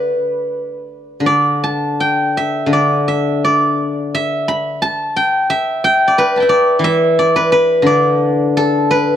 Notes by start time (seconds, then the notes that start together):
Already playing: B4 D5 E5
1.20 D3
1.26 D5
1.64 A5
2.00 G5
2.37 E5
2.66 D3
2.73 D5
3.08 E5
3.44 D5
4.15 E5
4.48 B5
4.82 A5
5.16 G5
5.50 E5
5.84 G5
6.08 D5
6.18 B4
6.36 A5 B5
6.40 E5 G5
6.49 D5
6.79 E3
6.84 E5
7.19 D5
7.36 B4
7.52 B4
7.82 D3
7.86 D5
8.57 A4
8.91 B4